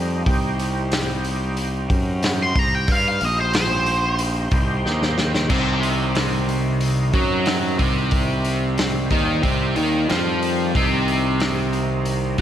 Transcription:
0.00 0.23 F2 medium
0.00 0.23 G3 medium
0.00 0.23 C4 medium
0.00 0.23 D#4 medium
0.26 1.86 C2 medium
0.26 2.86 C4 medium
0.26 2.86 D#4 medium
0.26 2.86 G4 medium
0.26 kick loud
0.26 open hi-hat medium
0.59 open hi-hat medium
0.92 snare loud
0.92 open hi-hat medium
1.24 open hi-hat medium
1.57 open hi-hat medium
1.90 2.52 F#2 loud
1.90 kick loud
1.90 open hi-hat medium
2.23 snare loud
2.23 open hi-hat medium
2.43 2.59 C6 loud
2.56 2.86 C2 medium
2.56 2.73 A#5 medium
2.56 kick loud
2.56 open hi-hat medium
2.75 2.91 G5 medium
2.87 3.19 G2 medium
2.87 3.10 E4 medium
2.87 3.10 G#4 medium
2.87 3.10 C#5 medium
2.87 kick loud
2.87 open hi-hat medium
2.91 3.06 F5 loud
3.08 5.47 D#4 medium
3.08 5.47 G4 medium
3.08 5.47 C5 medium
3.08 3.22 F5 loud
3.21 4.48 A#1 loud
3.21 open hi-hat medium
3.25 3.39 D#5 loud
3.41 3.55 C5 medium
3.53 4.19 C5 loud
3.53 snare loud
3.53 open hi-hat medium
3.86 open hi-hat medium
4.19 open hi-hat medium
4.51 4.83 C2 loud
4.51 kick loud
4.51 open hi-hat medium
4.86 5.47 D#2 loud
4.86 snare medium
5.02 snare medium
5.18 snare medium
5.35 snare medium
5.50 7.10 C2 medium
5.50 7.13 C3 medium
5.50 8.10 D#3 medium
5.50 7.13 C4 medium
5.50 8.10 C4 medium
5.50 8.10 D#4 medium
5.50 kick loud
5.50 crash loud
5.83 open hi-hat medium
6.15 snare loud
6.15 open hi-hat medium
6.49 open hi-hat medium
6.81 open hi-hat medium
7.13 7.76 F#2 loud
7.13 7.79 F#3 medium
7.13 7.79 F#4 loud
7.13 kick loud
7.13 open hi-hat medium
7.46 snare loud
7.46 open hi-hat medium
7.79 9.07 C2 medium
7.79 9.10 C3 medium
7.79 9.10 C4 medium
7.79 kick loud
7.79 open hi-hat medium
8.11 10.72 D#3 medium
8.11 10.72 G3 medium
8.11 10.72 C4 medium
8.11 kick medium
8.11 open hi-hat medium
8.45 open hi-hat medium
8.78 snare loud
8.78 open hi-hat medium
9.11 9.42 D#2 loud
9.11 9.43 D#3 medium
9.11 9.43 D#4 medium
9.11 kick loud
9.11 open hi-hat medium
9.43 9.75 C2 medium
9.43 9.75 C3 medium
9.43 9.76 C4 medium
9.43 kick medium
9.43 open hi-hat medium
9.76 10.08 D#2 medium
9.76 10.08 D#3 medium
9.76 10.09 D#4 medium
9.76 open hi-hat medium
10.09 10.72 F2 medium
10.09 10.74 F3 medium
10.09 10.75 F4 loud
10.09 snare medium
10.09 open hi-hat medium
10.42 open hi-hat medium
10.75 12.35 C2 medium
10.75 12.38 C3 medium
10.75 12.41 D#3 medium
10.75 12.39 C4 medium
10.75 12.41 C4 medium
10.75 12.41 D#4 medium
10.75 kick loud
10.75 open hi-hat medium
11.08 open hi-hat medium
11.40 snare loud
11.40 open hi-hat medium
11.73 open hi-hat medium
12.05 open hi-hat medium
12.38 open hi-hat medium

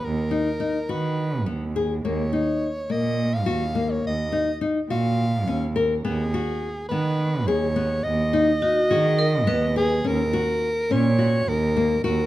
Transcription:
0.04 0.28 D#2 medium
0.04 0.92 A#4 medium
0.31 0.49 D#4 medium
0.60 0.78 D#4 medium
0.89 1.49 D#3 medium
0.89 1.24 F#4 medium
0.89 1.47 B4 medium
1.46 1.97 D#2 medium
1.46 1.64 B3 medium
1.76 1.93 G#4 medium
2.05 2.29 D#2 medium
2.05 2.22 A#3 medium
2.05 2.92 C#5 medium
2.33 2.67 D#4 medium
2.90 3.49 A#2 medium
2.90 3.25 A#3 medium
2.90 3.35 D#5 medium
3.34 3.93 F5 medium
3.46 3.97 D#2 medium
3.46 3.64 F#4 medium
3.75 4.10 A#3 medium
3.91 4.05 C#5 medium
4.04 4.29 D#2 medium
4.04 4.59 D#5 medium
4.32 4.50 D#4 medium
4.61 4.79 D#4 medium
4.90 5.50 A#2 medium
4.90 5.25 F#4 medium
4.90 5.73 F5 medium
5.48 5.98 D#2 medium
5.48 5.65 C#4 medium
5.76 5.93 A#4 medium
6.05 6.30 D#2 medium
6.05 6.22 B3 medium
6.05 6.87 G#4 medium
6.34 6.69 F#4 medium
6.89 7.49 D#3 medium
6.89 7.26 B3 medium
6.89 7.49 B4 medium
7.47 7.97 D#2 medium
7.47 7.65 G#4 medium
7.47 8.05 C#5 medium
7.76 8.11 B3 medium
8.03 8.30 D#2 medium
8.03 9.76 D#5 medium
8.33 8.51 D#4 medium
8.62 8.79 D#4 medium
8.62 8.89 F#4 medium
8.91 9.50 D#3 medium
8.91 9.25 F#4 medium
8.91 9.20 G#4 medium
9.19 9.32 A#4 medium
9.47 9.97 D#2 medium
9.47 9.65 B3 medium
9.47 10.01 B4 medium
9.76 9.94 G#4 medium
9.76 10.09 G#4 medium
10.04 10.30 D#2 medium
10.04 10.22 C#4 medium
10.04 10.94 A#4 medium
10.33 10.68 F#4 medium
10.91 11.40 A#2 medium
10.91 11.08 C#4 medium
10.91 11.50 C#5 loud
11.19 11.53 F#4 medium
11.46 11.96 D#2 medium
11.46 12.04 A#4 medium
11.77 11.94 A#3 medium
12.04 12.26 D#2 medium
12.04 12.26 F#4 medium
12.04 12.26 A#4 medium

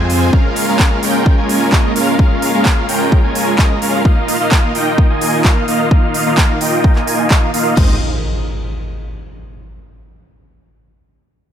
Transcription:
0.00 0.31 F2 loud
0.00 0.29 F3 medium
0.00 0.30 G#3 medium
0.00 4.01 G#3 medium
0.00 0.29 C4 medium
0.00 0.30 C4 medium
0.00 0.30 F4 medium
0.00 0.30 C5 medium
0.00 0.30 G#5 loud
0.10 open hi-hat loud
0.33 0.65 G#3 loud
0.33 4.01 A#3 medium
0.33 4.01 C#4 medium
0.33 0.65 C#4 medium
0.33 0.65 F4 medium
0.33 0.65 A#4 medium
0.33 0.65 F5 loud
0.33 kick loud
0.56 open hi-hat loud
0.68 1.00 G#3 loud
0.68 1.00 C#4 medium
0.68 1.00 F4 medium
0.68 1.00 A#4 medium
0.68 1.00 F5 loud
0.79 kick loud
0.79 clap loud
1.03 1.35 G#3 medium
1.03 1.35 C#4 medium
1.03 1.35 F4 medium
1.03 1.35 A#4 medium
1.03 1.35 G5 loud
1.03 open hi-hat loud
1.26 kick loud
1.38 1.70 G#3 medium
1.38 1.70 C#4 medium
1.38 1.70 F4 medium
1.38 1.70 A#4 medium
1.38 1.70 G#5 medium
1.49 open hi-hat loud
1.72 1.93 G#3 loud
1.72 1.93 C#4 medium
1.72 1.93 F4 medium
1.72 1.93 A#4 medium
1.72 1.93 D#5 loud
1.72 kick loud
1.72 clap loud
1.96 2.16 G#3 loud
1.96 2.16 C#4 medium
1.96 2.16 F4 medium
1.96 2.16 A#4 medium
1.96 2.16 F5 loud
1.96 open hi-hat loud
2.19 2.51 G#3 loud
2.19 2.51 C#4 medium
2.19 2.51 F4 medium
2.19 2.51 A#4 medium
2.19 2.51 F5 loud
2.19 kick loud
2.42 open hi-hat loud
2.54 2.86 G#3 medium
2.54 2.86 C#4 medium
2.54 2.86 F4 medium
2.54 2.86 A#4 medium
2.54 2.86 F5 loud
2.65 kick loud
2.65 clap loud
2.89 3.21 G#3 medium
2.89 3.21 C#4 medium
2.89 3.21 F4 medium
2.89 3.21 A#4 medium
2.89 3.21 G5 loud
2.89 open hi-hat loud
3.12 kick loud
3.24 3.56 G#3 medium
3.24 3.56 C#4 medium
3.24 3.56 F4 medium
3.24 3.56 A#4 medium
3.24 3.56 G#5 medium
3.35 open hi-hat loud
3.58 3.79 G#3 loud
3.58 3.79 C#4 medium
3.58 3.79 F4 medium
3.58 3.79 A#4 medium
3.58 3.79 D#5 loud
3.58 kick loud
3.58 clap loud
3.82 4.02 G#3 loud
3.82 4.02 C#4 medium
3.82 4.02 F4 medium
3.82 4.02 A#4 medium
3.82 4.02 F5 loud
3.82 open hi-hat loud
4.05 7.73 D#3 medium
4.05 4.37 A#3 loud
4.05 7.73 D#4 medium
4.05 4.37 D#4 medium
4.05 7.73 F4 medium
4.05 4.37 F4 medium
4.05 7.73 A#4 medium
4.05 4.37 D#5 medium
4.05 4.37 F5 loud
4.05 kick loud
4.28 open hi-hat loud
4.40 4.72 A#3 loud
4.40 4.72 D#4 medium
4.40 4.72 F4 medium
4.40 4.72 D#5 medium
4.40 4.72 F5 loud
4.51 kick loud
4.51 clap loud
4.75 5.07 A#3 medium
4.75 5.07 D#4 medium
4.75 5.07 F4 medium
4.75 5.07 D#5 medium
4.75 5.07 G5 loud
4.75 open hi-hat loud
4.98 kick loud
5.10 5.42 A#3 medium
5.10 5.42 D#4 medium
5.10 5.42 F4 medium
5.10 5.42 D#5 medium
5.10 5.42 G#5 medium
5.21 open hi-hat loud
5.45 5.65 A#3 loud
5.45 5.65 D#4 medium
5.45 5.65 F4 medium
5.45 5.65 D#5 medium
5.45 5.65 F5 loud
5.45 kick loud
5.45 clap loud
5.68 5.88 A#3 loud
5.68 5.88 D#4 medium
5.68 5.88 F4 medium
5.68 5.88 D#5 medium
5.68 5.88 F5 loud
5.68 open hi-hat loud
5.91 6.23 A#3 loud
5.91 6.23 D#4 medium
5.91 6.23 F4 medium
5.91 6.23 D#5 medium
5.91 6.23 F5 loud
5.91 kick loud
6.14 open hi-hat loud
6.26 6.58 A#3 loud
6.26 6.58 D#4 medium
6.26 6.58 F4 medium
6.26 6.58 D#5 medium
6.26 6.58 F5 loud
6.38 kick loud
6.38 clap loud
6.61 6.93 A#3 medium
6.61 6.93 D#4 medium
6.61 6.93 F4 medium
6.61 6.93 D#5 medium
6.61 6.93 G5 loud
6.61 open hi-hat loud
6.84 kick loud
6.96 7.28 A#3 medium
6.96 7.28 D#4 medium
6.96 7.28 F4 medium
6.96 7.28 D#5 medium
6.96 7.28 G#5 medium
6.96 clap soft
7.07 open hi-hat loud
7.31 7.51 A#3 loud
7.31 7.51 D#4 medium
7.31 7.51 F4 medium
7.31 7.51 D#5 medium
7.31 7.51 F5 loud
7.31 kick loud
7.31 clap loud
7.54 7.74 A#3 loud
7.54 7.74 D#4 medium
7.54 7.74 F4 medium
7.54 7.74 D#5 medium
7.54 7.74 F5 loud
7.54 open hi-hat loud
7.77 7.99 G#1 medium
7.77 7.95 G#3 medium
7.77 7.95 C4 medium
7.77 7.95 D#4 medium
7.77 7.95 C5 medium
7.77 7.95 D#5 loud
7.77 kick loud
7.77 crash medium
7.77 impact medium

